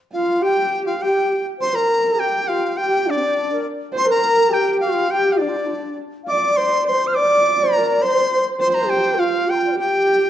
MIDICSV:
0, 0, Header, 1, 4, 480
1, 0, Start_track
1, 0, Tempo, 584795
1, 344, Time_signature, 2, 2, 24, 8
1, 8453, End_track
2, 0, Start_track
2, 0, Title_t, "Dizi"
2, 0, Program_c, 0, 73
2, 108, Note_on_c, 0, 77, 83
2, 350, Note_on_c, 0, 79, 97
2, 362, Note_off_c, 0, 77, 0
2, 704, Note_off_c, 0, 79, 0
2, 709, Note_on_c, 0, 77, 75
2, 837, Note_on_c, 0, 79, 85
2, 849, Note_off_c, 0, 77, 0
2, 1203, Note_off_c, 0, 79, 0
2, 1322, Note_on_c, 0, 84, 98
2, 1438, Note_on_c, 0, 82, 99
2, 1450, Note_off_c, 0, 84, 0
2, 1801, Note_on_c, 0, 79, 98
2, 1813, Note_off_c, 0, 82, 0
2, 2034, Note_on_c, 0, 77, 91
2, 2046, Note_off_c, 0, 79, 0
2, 2274, Note_on_c, 0, 79, 96
2, 2286, Note_off_c, 0, 77, 0
2, 2546, Note_on_c, 0, 74, 89
2, 2558, Note_off_c, 0, 79, 0
2, 3008, Note_off_c, 0, 74, 0
2, 3262, Note_on_c, 0, 84, 112
2, 3357, Note_off_c, 0, 84, 0
2, 3368, Note_on_c, 0, 82, 111
2, 3722, Note_on_c, 0, 79, 101
2, 3734, Note_off_c, 0, 82, 0
2, 3938, Note_off_c, 0, 79, 0
2, 3943, Note_on_c, 0, 77, 88
2, 4191, Note_on_c, 0, 79, 102
2, 4203, Note_off_c, 0, 77, 0
2, 4368, Note_on_c, 0, 77, 56
2, 4381, Note_off_c, 0, 79, 0
2, 4420, Note_on_c, 0, 74, 74
2, 4432, Note_off_c, 0, 77, 0
2, 4911, Note_off_c, 0, 74, 0
2, 5157, Note_on_c, 0, 86, 102
2, 5389, Note_on_c, 0, 84, 101
2, 5402, Note_off_c, 0, 86, 0
2, 5635, Note_off_c, 0, 84, 0
2, 5639, Note_on_c, 0, 84, 106
2, 5804, Note_on_c, 0, 89, 85
2, 5816, Note_off_c, 0, 84, 0
2, 5866, Note_on_c, 0, 86, 118
2, 5878, Note_off_c, 0, 89, 0
2, 6346, Note_on_c, 0, 82, 98
2, 6358, Note_off_c, 0, 86, 0
2, 6585, Note_on_c, 0, 84, 113
2, 6597, Note_off_c, 0, 82, 0
2, 6945, Note_off_c, 0, 84, 0
2, 7064, Note_on_c, 0, 84, 106
2, 7145, Note_off_c, 0, 84, 0
2, 7150, Note_on_c, 0, 84, 75
2, 7170, Note_on_c, 0, 82, 91
2, 7182, Note_off_c, 0, 84, 0
2, 7302, Note_on_c, 0, 79, 94
2, 7314, Note_off_c, 0, 82, 0
2, 7545, Note_on_c, 0, 77, 102
2, 7558, Note_off_c, 0, 79, 0
2, 7795, Note_on_c, 0, 79, 97
2, 7807, Note_off_c, 0, 77, 0
2, 8030, Note_off_c, 0, 79, 0
2, 8040, Note_on_c, 0, 79, 99
2, 8453, Note_off_c, 0, 79, 0
2, 8453, End_track
3, 0, Start_track
3, 0, Title_t, "Horsehead fiddle"
3, 0, Program_c, 1, 110
3, 105, Note_on_c, 1, 65, 80
3, 346, Note_on_c, 1, 67, 83
3, 358, Note_off_c, 1, 65, 0
3, 826, Note_off_c, 1, 67, 0
3, 831, Note_on_c, 1, 67, 59
3, 1175, Note_off_c, 1, 67, 0
3, 1324, Note_on_c, 1, 72, 84
3, 1445, Note_on_c, 1, 70, 89
3, 1458, Note_off_c, 1, 72, 0
3, 1803, Note_on_c, 1, 67, 77
3, 1815, Note_off_c, 1, 70, 0
3, 2281, Note_off_c, 1, 67, 0
3, 2286, Note_on_c, 1, 67, 85
3, 2520, Note_on_c, 1, 62, 78
3, 2533, Note_off_c, 1, 67, 0
3, 2995, Note_off_c, 1, 62, 0
3, 3225, Note_on_c, 1, 72, 92
3, 3329, Note_on_c, 1, 70, 90
3, 3341, Note_off_c, 1, 72, 0
3, 3697, Note_on_c, 1, 67, 80
3, 3709, Note_off_c, 1, 70, 0
3, 4182, Note_off_c, 1, 67, 0
3, 4191, Note_on_c, 1, 67, 80
3, 4434, Note_on_c, 1, 62, 69
3, 4446, Note_off_c, 1, 67, 0
3, 4918, Note_off_c, 1, 62, 0
3, 5158, Note_on_c, 1, 74, 93
3, 5396, Note_on_c, 1, 72, 83
3, 5408, Note_off_c, 1, 74, 0
3, 5631, Note_off_c, 1, 72, 0
3, 5636, Note_on_c, 1, 72, 84
3, 5882, Note_on_c, 1, 74, 101
3, 5894, Note_off_c, 1, 72, 0
3, 6575, Note_on_c, 1, 72, 86
3, 6587, Note_off_c, 1, 74, 0
3, 6940, Note_off_c, 1, 72, 0
3, 7059, Note_on_c, 1, 72, 99
3, 7537, Note_on_c, 1, 65, 83
3, 7549, Note_off_c, 1, 72, 0
3, 8010, Note_on_c, 1, 67, 91
3, 8022, Note_off_c, 1, 65, 0
3, 8453, Note_off_c, 1, 67, 0
3, 8453, End_track
4, 0, Start_track
4, 0, Title_t, "Xiao"
4, 0, Program_c, 2, 77
4, 111, Note_on_c, 2, 65, 82
4, 340, Note_on_c, 2, 67, 88
4, 352, Note_off_c, 2, 65, 0
4, 712, Note_on_c, 2, 65, 62
4, 724, Note_off_c, 2, 67, 0
4, 806, Note_off_c, 2, 65, 0
4, 811, Note_on_c, 2, 67, 70
4, 1164, Note_off_c, 2, 67, 0
4, 1304, Note_on_c, 2, 72, 80
4, 1424, Note_on_c, 2, 70, 83
4, 1437, Note_off_c, 2, 72, 0
4, 1790, Note_on_c, 2, 67, 79
4, 1803, Note_off_c, 2, 70, 0
4, 2047, Note_on_c, 2, 65, 74
4, 2059, Note_off_c, 2, 67, 0
4, 2286, Note_off_c, 2, 65, 0
4, 2297, Note_on_c, 2, 67, 77
4, 2537, Note_on_c, 2, 62, 77
4, 2549, Note_off_c, 2, 67, 0
4, 2599, Note_on_c, 2, 60, 68
4, 2611, Note_off_c, 2, 62, 0
4, 2655, Note_on_c, 2, 62, 76
4, 2668, Note_off_c, 2, 60, 0
4, 2888, Note_off_c, 2, 62, 0
4, 2892, Note_on_c, 2, 70, 68
4, 2996, Note_off_c, 2, 70, 0
4, 3256, Note_on_c, 2, 72, 94
4, 3372, Note_on_c, 2, 70, 96
4, 3385, Note_off_c, 2, 72, 0
4, 3709, Note_on_c, 2, 67, 88
4, 3722, Note_off_c, 2, 70, 0
4, 3964, Note_on_c, 2, 65, 85
4, 3976, Note_off_c, 2, 67, 0
4, 4195, Note_off_c, 2, 65, 0
4, 4200, Note_on_c, 2, 67, 77
4, 4449, Note_on_c, 2, 62, 53
4, 4462, Note_off_c, 2, 67, 0
4, 4503, Note_on_c, 2, 65, 53
4, 4516, Note_off_c, 2, 62, 0
4, 4569, Note_on_c, 2, 62, 52
4, 4581, Note_off_c, 2, 65, 0
4, 4652, Note_on_c, 2, 65, 49
4, 4664, Note_off_c, 2, 62, 0
4, 4713, Note_on_c, 2, 62, 63
4, 4725, Note_off_c, 2, 65, 0
4, 4924, Note_off_c, 2, 62, 0
4, 5119, Note_on_c, 2, 77, 71
4, 5177, Note_on_c, 2, 74, 85
4, 5189, Note_off_c, 2, 77, 0
4, 5655, Note_on_c, 2, 72, 89
4, 5667, Note_off_c, 2, 74, 0
4, 5898, Note_on_c, 2, 74, 102
4, 5910, Note_off_c, 2, 72, 0
4, 6265, Note_on_c, 2, 72, 90
4, 6278, Note_off_c, 2, 74, 0
4, 6381, Note_on_c, 2, 70, 86
4, 6393, Note_off_c, 2, 72, 0
4, 6604, Note_on_c, 2, 72, 99
4, 6616, Note_off_c, 2, 70, 0
4, 6955, Note_off_c, 2, 72, 0
4, 7060, Note_on_c, 2, 72, 81
4, 7277, Note_on_c, 2, 67, 92
4, 7290, Note_off_c, 2, 72, 0
4, 7525, Note_on_c, 2, 65, 81
4, 7538, Note_off_c, 2, 67, 0
4, 7776, Note_on_c, 2, 67, 80
4, 7789, Note_off_c, 2, 65, 0
4, 7809, Note_off_c, 2, 67, 0
4, 7814, Note_on_c, 2, 84, 34
4, 7840, Note_off_c, 2, 84, 0
4, 7844, Note_on_c, 2, 82, 40
4, 7875, Note_off_c, 2, 82, 0
4, 7880, Note_on_c, 2, 79, 43
4, 7902, Note_off_c, 2, 79, 0
4, 7907, Note_on_c, 2, 77, 44
4, 7920, Note_on_c, 2, 74, 48
4, 7924, Note_off_c, 2, 77, 0
4, 7970, Note_off_c, 2, 74, 0
4, 7975, Note_on_c, 2, 72, 51
4, 7992, Note_off_c, 2, 72, 0
4, 7997, Note_on_c, 2, 70, 50
4, 8007, Note_on_c, 2, 67, 77
4, 8013, Note_off_c, 2, 70, 0
4, 8453, Note_off_c, 2, 67, 0
4, 8453, End_track
0, 0, End_of_file